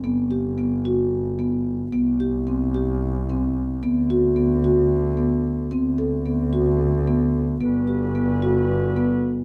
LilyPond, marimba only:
\new Staff \with { instrumentName = "Marimba" } { \time 7/8 \key g \major \tempo 4 = 111 b8 g'8 b8 fis'4 b4 | b8 g'8 c'8 g'4 c'4 | b8 fis'8 b8 fis'4 b4 | c'8 a'8 b8 fis'4 b4 |
b8 g'8 b8 fis'4 b4 | }